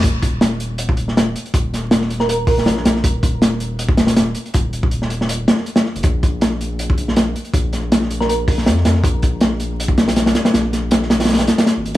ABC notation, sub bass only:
X:1
M:4/4
L:1/16
Q:"Swing 16ths" 1/4=160
K:Bbphr
V:1 name="Sub bass" clef=bass
E,,,8- E,,,2 E,,,4 z2 | E,,,12 B,,,2 B,,,2 | E,,,8- E,,,2 E,,,4 z2 | E,,,8- E,,,2 z4 z G,,, |
B,,,8- B,,,2 B,,,4 z2 | B,,,12 F,,2 F,,2 | B,,,8- B,,,2 B,,,4 z2 | B,,,8- B,,,2 z3 A,,,3 |]